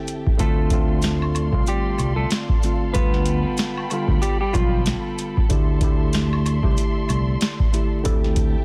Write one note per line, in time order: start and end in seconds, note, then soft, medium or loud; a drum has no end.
0.00 0.33 D3 medium
0.00 0.33 C4 loud
0.00 0.33 E4 medium
0.00 0.33 G4 medium
0.00 0.37 G4 medium
0.00 0.34 A4 loud
0.00 0.37 E5 medium
0.00 0.37 G5 medium
0.00 0.37 A5 medium
0.07 closed hi-hat medium
0.07 maracas medium
0.27 kick medium
0.37 1.50 D2 loud
0.37 0.68 D3 loud
0.37 0.68 A3 loud
0.37 1.64 A3 medium
0.37 0.69 C4 medium
0.37 0.69 F4 loud
0.37 1.63 A4 medium
0.37 8.02 A4 medium
0.37 2.93 D5 medium
0.37 5.46 F5 medium
0.37 2.93 C6 medium
0.37 kick loud
0.37 closed hi-hat loud
0.37 maracas medium
0.70 1.46 D3 medium
0.70 1.46 A3 medium
0.70 1.47 C4 medium
0.70 1.47 F4 loud
0.70 kick loud
0.70 closed hi-hat medium
0.70 maracas medium
1.02 snare loud
1.02 closed hi-hat medium
1.02 maracas medium
1.22 high woodblock medium
1.35 closed hi-hat medium
1.35 high woodblock medium
1.35 maracas medium
1.52 1.63 C2 medium
1.52 2.54 D3 medium
1.52 2.55 A3 medium
1.52 2.55 C4 medium
1.52 2.56 F4 loud
1.52 kick medium
1.67 2.15 G3 medium
1.67 2.15 G4 medium
1.67 closed hi-hat loud
1.67 maracas medium
1.98 2.23 C2 loud
1.98 closed hi-hat medium
1.98 high woodblock medium
1.98 maracas soft
2.16 2.29 A3 medium
2.16 2.29 A4 medium
2.31 snare loud
2.31 closed hi-hat loud
2.31 maracas medium
2.49 kick medium
2.63 2.92 D3 medium
2.63 2.93 A3 medium
2.63 2.93 C4 medium
2.63 2.94 F4 medium
2.63 closed hi-hat medium
2.63 maracas soft
2.93 3.44 D2 loud
2.93 3.83 D3 medium
2.93 3.83 G3 medium
2.93 3.84 B3 medium
2.93 4.18 B3 medium
2.93 3.84 F4 loud
2.93 4.18 B4 loud
2.93 5.47 G5 medium
2.93 5.47 B5 medium
2.93 kick loud
2.93 closed hi-hat medium
2.93 maracas medium
3.14 snare soft
3.26 closed hi-hat medium
3.26 maracas medium
3.57 snare loud
3.57 closed hi-hat medium
3.57 maracas medium
3.77 high woodblock medium
3.90 4.37 D3 loud
3.90 4.37 G3 medium
3.90 4.37 B3 medium
3.90 4.38 F4 loud
3.90 closed hi-hat medium
3.90 high woodblock medium
3.90 maracas medium
4.08 4.19 D2 loud
4.08 kick medium
4.22 4.39 G3 medium
4.22 4.39 G4 medium
4.22 closed hi-hat medium
4.22 maracas medium
4.41 4.53 G3 medium
4.41 4.53 G4 medium
4.53 4.93 B1 loud
4.53 5.43 D3 medium
4.53 4.83 F3 medium
4.53 5.43 G3 medium
4.53 5.44 B3 medium
4.53 4.82 F4 medium
4.53 5.44 F4 loud
4.53 kick medium
4.53 closed hi-hat medium
4.53 high woodblock medium
4.53 maracas medium
4.86 snare loud
4.86 closed hi-hat loud
4.86 maracas medium
5.18 closed hi-hat medium
5.18 maracas soft
5.37 kick medium
5.49 6.60 D2 loud
5.49 5.79 D3 loud
5.49 5.80 A3 medium
5.49 5.80 E4 medium
5.49 5.80 G4 loud
5.49 8.03 D5 medium
5.49 8.03 E5 medium
5.49 8.03 C6 loud
5.49 kick loud
5.49 closed hi-hat loud
5.49 maracas medium
5.81 6.57 D3 loud
5.81 6.57 A3 medium
5.81 6.57 E4 medium
5.81 6.58 G4 loud
5.81 kick loud
5.81 closed hi-hat medium
5.81 maracas medium
6.13 snare loud
6.13 closed hi-hat medium
6.13 maracas medium
6.33 high woodblock medium
6.46 closed hi-hat medium
6.46 high woodblock medium
6.46 maracas medium
6.63 6.74 C2 loud
6.63 7.65 D3 medium
6.63 7.65 A3 medium
6.63 7.66 E4 medium
6.63 7.66 G4 loud
6.63 kick medium
6.77 closed hi-hat medium
6.77 maracas medium
7.09 7.34 C2 medium
7.09 closed hi-hat medium
7.09 high woodblock medium
7.09 maracas soft
7.41 snare loud
7.41 closed hi-hat loud
7.41 maracas medium
7.60 kick medium
7.72 8.02 D3 medium
7.72 8.03 A3 medium
7.72 8.03 E4 medium
7.72 8.04 G4 medium
7.72 closed hi-hat medium
7.72 maracas soft
8.03 8.54 D2 loud
8.03 8.65 D3 loud
8.03 8.65 C4 medium
8.03 8.65 E4 medium
8.03 8.65 G4 loud
8.03 8.65 G4 medium
8.03 8.65 A4 loud
8.03 8.65 E5 medium
8.03 8.65 G5 medium
8.03 8.65 A5 medium
8.03 kick loud
8.03 closed hi-hat loud
8.03 maracas medium
8.24 snare soft
8.36 kick loud
8.36 closed hi-hat medium
8.36 maracas medium